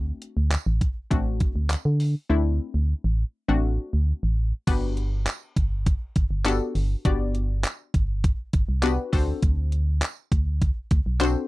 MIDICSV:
0, 0, Header, 1, 4, 480
1, 0, Start_track
1, 0, Key_signature, 1, "major"
1, 0, Tempo, 594059
1, 1857, Time_signature, 4, 2, 24, 8
1, 9274, End_track
2, 0, Start_track
2, 0, Title_t, "Synth pluck"
2, 0, Program_c, 0, 84
2, 0, Note_on_c, 0, 57, 92
2, 0, Note_on_c, 0, 60, 87
2, 0, Note_on_c, 0, 62, 87
2, 0, Note_on_c, 0, 66, 102
2, 464, Note_off_c, 0, 57, 0
2, 465, Note_off_c, 0, 60, 0
2, 465, Note_off_c, 0, 62, 0
2, 466, Note_off_c, 0, 66, 0
2, 893, Note_on_c, 0, 57, 87
2, 895, Note_on_c, 0, 60, 82
2, 896, Note_on_c, 0, 62, 79
2, 898, Note_on_c, 0, 66, 96
2, 1375, Note_off_c, 0, 57, 0
2, 1376, Note_off_c, 0, 60, 0
2, 1377, Note_off_c, 0, 62, 0
2, 1378, Note_off_c, 0, 66, 0
2, 1854, Note_on_c, 0, 57, 85
2, 1856, Note_on_c, 0, 60, 78
2, 1857, Note_on_c, 0, 62, 80
2, 1858, Note_on_c, 0, 64, 97
2, 2336, Note_off_c, 0, 57, 0
2, 2337, Note_off_c, 0, 60, 0
2, 2337, Note_off_c, 0, 62, 0
2, 2338, Note_off_c, 0, 64, 0
2, 2815, Note_on_c, 0, 57, 86
2, 2816, Note_on_c, 0, 60, 77
2, 2817, Note_on_c, 0, 62, 79
2, 2819, Note_on_c, 0, 66, 96
2, 3296, Note_off_c, 0, 57, 0
2, 3296, Note_off_c, 0, 60, 0
2, 3297, Note_off_c, 0, 62, 0
2, 3298, Note_off_c, 0, 66, 0
2, 3775, Note_on_c, 0, 59, 87
2, 3776, Note_on_c, 0, 62, 80
2, 3777, Note_on_c, 0, 66, 79
2, 3778, Note_on_c, 0, 67, 81
2, 3779, Note_on_c, 0, 71, 95
2, 4256, Note_off_c, 0, 59, 0
2, 4257, Note_off_c, 0, 62, 0
2, 4257, Note_off_c, 0, 66, 0
2, 4258, Note_off_c, 0, 67, 0
2, 4258, Note_off_c, 0, 71, 0
2, 5216, Note_on_c, 0, 59, 91
2, 5217, Note_on_c, 0, 62, 83
2, 5217, Note_on_c, 0, 66, 85
2, 5219, Note_on_c, 0, 67, 86
2, 5220, Note_on_c, 0, 69, 101
2, 5456, Note_off_c, 0, 59, 0
2, 5457, Note_off_c, 0, 62, 0
2, 5457, Note_off_c, 0, 66, 0
2, 5458, Note_off_c, 0, 67, 0
2, 5459, Note_off_c, 0, 69, 0
2, 5696, Note_on_c, 0, 59, 89
2, 5697, Note_on_c, 0, 62, 76
2, 5697, Note_on_c, 0, 66, 78
2, 5698, Note_on_c, 0, 67, 81
2, 5700, Note_on_c, 0, 74, 98
2, 6177, Note_off_c, 0, 59, 0
2, 6177, Note_off_c, 0, 62, 0
2, 6177, Note_off_c, 0, 66, 0
2, 6178, Note_off_c, 0, 67, 0
2, 6179, Note_off_c, 0, 74, 0
2, 7135, Note_on_c, 0, 59, 95
2, 7136, Note_on_c, 0, 62, 88
2, 7137, Note_on_c, 0, 66, 88
2, 7137, Note_on_c, 0, 67, 83
2, 7139, Note_on_c, 0, 71, 102
2, 7366, Note_off_c, 0, 62, 0
2, 7366, Note_off_c, 0, 66, 0
2, 7374, Note_on_c, 0, 60, 97
2, 7375, Note_on_c, 0, 62, 83
2, 7376, Note_off_c, 0, 59, 0
2, 7376, Note_on_c, 0, 66, 83
2, 7377, Note_off_c, 0, 67, 0
2, 7377, Note_on_c, 0, 69, 89
2, 7378, Note_off_c, 0, 71, 0
2, 7378, Note_on_c, 0, 72, 102
2, 8143, Note_off_c, 0, 60, 0
2, 8144, Note_off_c, 0, 62, 0
2, 8144, Note_off_c, 0, 66, 0
2, 8145, Note_off_c, 0, 69, 0
2, 8145, Note_off_c, 0, 72, 0
2, 9054, Note_on_c, 0, 60, 96
2, 9056, Note_on_c, 0, 62, 87
2, 9056, Note_on_c, 0, 66, 83
2, 9057, Note_on_c, 0, 69, 84
2, 9058, Note_on_c, 0, 72, 102
2, 9274, Note_off_c, 0, 60, 0
2, 9274, Note_off_c, 0, 62, 0
2, 9274, Note_off_c, 0, 66, 0
2, 9274, Note_off_c, 0, 69, 0
2, 9274, Note_off_c, 0, 72, 0
2, 9274, End_track
3, 0, Start_track
3, 0, Title_t, "FM bass"
3, 0, Program_c, 1, 39
3, 0, Note_on_c, 1, 38, 101
3, 99, Note_off_c, 1, 38, 0
3, 296, Note_on_c, 1, 38, 85
3, 457, Note_off_c, 1, 38, 0
3, 537, Note_on_c, 1, 33, 108
3, 697, Note_off_c, 1, 33, 0
3, 898, Note_on_c, 1, 33, 103
3, 1139, Note_off_c, 1, 33, 0
3, 1257, Note_on_c, 1, 38, 85
3, 1418, Note_off_c, 1, 38, 0
3, 1497, Note_on_c, 1, 50, 90
3, 1738, Note_off_c, 1, 50, 0
3, 1858, Note_on_c, 1, 38, 105
3, 2098, Note_off_c, 1, 38, 0
3, 2216, Note_on_c, 1, 38, 84
3, 2377, Note_off_c, 1, 38, 0
3, 2459, Note_on_c, 1, 33, 104
3, 2619, Note_off_c, 1, 33, 0
3, 2818, Note_on_c, 1, 33, 104
3, 3059, Note_off_c, 1, 33, 0
3, 3178, Note_on_c, 1, 38, 89
3, 3338, Note_off_c, 1, 38, 0
3, 3419, Note_on_c, 1, 33, 92
3, 3659, Note_off_c, 1, 33, 0
3, 3776, Note_on_c, 1, 31, 104
3, 4258, Note_off_c, 1, 31, 0
3, 4496, Note_on_c, 1, 31, 87
3, 4818, Note_off_c, 1, 31, 0
3, 4976, Note_on_c, 1, 31, 92
3, 5057, Note_off_c, 1, 31, 0
3, 5095, Note_on_c, 1, 31, 89
3, 5337, Note_off_c, 1, 31, 0
3, 5456, Note_on_c, 1, 31, 89
3, 5617, Note_off_c, 1, 31, 0
3, 5697, Note_on_c, 1, 31, 106
3, 6179, Note_off_c, 1, 31, 0
3, 6416, Note_on_c, 1, 31, 93
3, 6738, Note_off_c, 1, 31, 0
3, 6896, Note_on_c, 1, 31, 94
3, 6977, Note_off_c, 1, 31, 0
3, 7018, Note_on_c, 1, 36, 88
3, 7259, Note_off_c, 1, 36, 0
3, 7377, Note_on_c, 1, 38, 90
3, 7537, Note_off_c, 1, 38, 0
3, 7616, Note_on_c, 1, 38, 102
3, 8099, Note_off_c, 1, 38, 0
3, 8336, Note_on_c, 1, 38, 92
3, 8657, Note_off_c, 1, 38, 0
3, 8816, Note_on_c, 1, 38, 97
3, 8896, Note_off_c, 1, 38, 0
3, 8939, Note_on_c, 1, 35, 86
3, 9179, Note_off_c, 1, 35, 0
3, 9274, End_track
4, 0, Start_track
4, 0, Title_t, "Drums"
4, 176, Note_on_c, 9, 42, 84
4, 257, Note_off_c, 9, 42, 0
4, 415, Note_on_c, 9, 39, 120
4, 417, Note_on_c, 9, 42, 93
4, 418, Note_on_c, 9, 54, 92
4, 496, Note_off_c, 9, 39, 0
4, 497, Note_off_c, 9, 42, 0
4, 499, Note_off_c, 9, 54, 0
4, 656, Note_on_c, 9, 36, 91
4, 657, Note_on_c, 9, 42, 81
4, 737, Note_off_c, 9, 36, 0
4, 738, Note_off_c, 9, 42, 0
4, 898, Note_on_c, 9, 36, 106
4, 898, Note_on_c, 9, 42, 88
4, 978, Note_off_c, 9, 42, 0
4, 979, Note_off_c, 9, 36, 0
4, 1134, Note_on_c, 9, 42, 85
4, 1136, Note_on_c, 9, 36, 98
4, 1215, Note_off_c, 9, 42, 0
4, 1217, Note_off_c, 9, 36, 0
4, 1375, Note_on_c, 9, 39, 119
4, 1375, Note_on_c, 9, 42, 104
4, 1377, Note_on_c, 9, 54, 95
4, 1456, Note_off_c, 9, 39, 0
4, 1456, Note_off_c, 9, 42, 0
4, 1458, Note_off_c, 9, 54, 0
4, 1616, Note_on_c, 9, 46, 80
4, 1696, Note_off_c, 9, 46, 0
4, 3776, Note_on_c, 9, 42, 97
4, 3777, Note_on_c, 9, 36, 115
4, 3777, Note_on_c, 9, 49, 103
4, 3857, Note_off_c, 9, 42, 0
4, 3858, Note_off_c, 9, 36, 0
4, 3858, Note_off_c, 9, 49, 0
4, 4016, Note_on_c, 9, 42, 87
4, 4097, Note_off_c, 9, 42, 0
4, 4255, Note_on_c, 9, 39, 122
4, 4256, Note_on_c, 9, 42, 86
4, 4256, Note_on_c, 9, 54, 93
4, 4335, Note_off_c, 9, 39, 0
4, 4337, Note_off_c, 9, 42, 0
4, 4337, Note_off_c, 9, 54, 0
4, 4496, Note_on_c, 9, 36, 92
4, 4498, Note_on_c, 9, 42, 86
4, 4577, Note_off_c, 9, 36, 0
4, 4579, Note_off_c, 9, 42, 0
4, 4738, Note_on_c, 9, 36, 106
4, 4738, Note_on_c, 9, 42, 95
4, 4819, Note_off_c, 9, 36, 0
4, 4819, Note_off_c, 9, 42, 0
4, 4975, Note_on_c, 9, 42, 84
4, 4976, Note_on_c, 9, 36, 99
4, 5055, Note_off_c, 9, 42, 0
4, 5057, Note_off_c, 9, 36, 0
4, 5215, Note_on_c, 9, 42, 105
4, 5216, Note_on_c, 9, 39, 126
4, 5217, Note_on_c, 9, 54, 99
4, 5296, Note_off_c, 9, 42, 0
4, 5297, Note_off_c, 9, 39, 0
4, 5297, Note_off_c, 9, 54, 0
4, 5456, Note_on_c, 9, 46, 84
4, 5537, Note_off_c, 9, 46, 0
4, 5696, Note_on_c, 9, 42, 98
4, 5697, Note_on_c, 9, 36, 110
4, 5777, Note_off_c, 9, 42, 0
4, 5778, Note_off_c, 9, 36, 0
4, 5936, Note_on_c, 9, 42, 88
4, 6017, Note_off_c, 9, 42, 0
4, 6175, Note_on_c, 9, 39, 116
4, 6176, Note_on_c, 9, 42, 90
4, 6177, Note_on_c, 9, 54, 93
4, 6256, Note_off_c, 9, 39, 0
4, 6257, Note_off_c, 9, 42, 0
4, 6258, Note_off_c, 9, 54, 0
4, 6416, Note_on_c, 9, 36, 96
4, 6418, Note_on_c, 9, 42, 86
4, 6497, Note_off_c, 9, 36, 0
4, 6499, Note_off_c, 9, 42, 0
4, 6658, Note_on_c, 9, 36, 105
4, 6659, Note_on_c, 9, 42, 88
4, 6739, Note_off_c, 9, 36, 0
4, 6740, Note_off_c, 9, 42, 0
4, 6895, Note_on_c, 9, 42, 86
4, 6896, Note_on_c, 9, 36, 98
4, 6975, Note_off_c, 9, 42, 0
4, 6977, Note_off_c, 9, 36, 0
4, 7134, Note_on_c, 9, 42, 108
4, 7135, Note_on_c, 9, 39, 120
4, 7137, Note_on_c, 9, 54, 95
4, 7215, Note_off_c, 9, 42, 0
4, 7216, Note_off_c, 9, 39, 0
4, 7218, Note_off_c, 9, 54, 0
4, 7376, Note_on_c, 9, 46, 82
4, 7377, Note_on_c, 9, 36, 102
4, 7457, Note_off_c, 9, 46, 0
4, 7458, Note_off_c, 9, 36, 0
4, 7615, Note_on_c, 9, 42, 100
4, 7616, Note_on_c, 9, 36, 108
4, 7696, Note_off_c, 9, 42, 0
4, 7697, Note_off_c, 9, 36, 0
4, 7855, Note_on_c, 9, 42, 91
4, 7936, Note_off_c, 9, 42, 0
4, 8095, Note_on_c, 9, 39, 123
4, 8096, Note_on_c, 9, 42, 90
4, 8098, Note_on_c, 9, 54, 94
4, 8176, Note_off_c, 9, 39, 0
4, 8177, Note_off_c, 9, 42, 0
4, 8179, Note_off_c, 9, 54, 0
4, 8336, Note_on_c, 9, 36, 93
4, 8337, Note_on_c, 9, 42, 82
4, 8417, Note_off_c, 9, 36, 0
4, 8418, Note_off_c, 9, 42, 0
4, 8578, Note_on_c, 9, 36, 104
4, 8578, Note_on_c, 9, 42, 92
4, 8659, Note_off_c, 9, 36, 0
4, 8659, Note_off_c, 9, 42, 0
4, 8814, Note_on_c, 9, 42, 85
4, 8816, Note_on_c, 9, 36, 99
4, 8894, Note_off_c, 9, 42, 0
4, 8897, Note_off_c, 9, 36, 0
4, 9055, Note_on_c, 9, 42, 104
4, 9056, Note_on_c, 9, 39, 120
4, 9058, Note_on_c, 9, 54, 97
4, 9136, Note_off_c, 9, 42, 0
4, 9137, Note_off_c, 9, 39, 0
4, 9138, Note_off_c, 9, 54, 0
4, 9274, End_track
0, 0, End_of_file